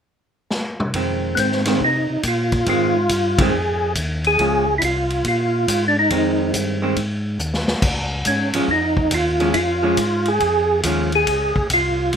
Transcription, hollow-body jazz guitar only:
0.95 D#3 G#3 C4
1.66 D#3 G#3 C4
2.68 D#3 G#3 C4
3.39 D#3 G#3 C4
4.40 F3 G#3 C#4
6.11 D#3 G#3 C4
6.82 D#3 G#3 C4
8.55 F3 G#3 C#4
9.40 F3 G#3 C#4
9.83 F3 G#3 C#4
10.84 F3 G#3 C#4

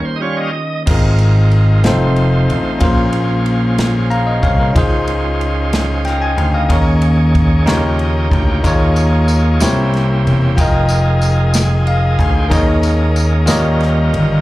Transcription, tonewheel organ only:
0.05 C5
0.16 D#5
0.20 G3 C#4 F4 C#5
0.37 D#5
0.86 G#3 C4 D#4 F4 A#4
1.84 A3 C4 D#4 F4 C5
2.80 A#3 C#4 F4 G#4 C5
4.76 G#3 C#4 D#4 F4 C5
6.06 F5 A#5
6.21 D#5 G#5
6.36 C5 F5
6.54 A#4 D#5
6.68 A#3 C#4 D#4 G#4 C#5
7.66 A#3 D#4 F4 G4 C#5
7.98 D#5
8.31 G5
8.64 A#3 D#4 F4 G#4 C#5
9.60 A#3 C4 C#4 E4 G4
10.57 G#3 D#4 F4 G#4 A#4
11.86 A#4 D#5
12.17 C5 F5
12.34 C5 G5
12.48 G#3 A#3 C#4 D#4 A#4
13.45 G3 C#4 D#4 F4 A#4

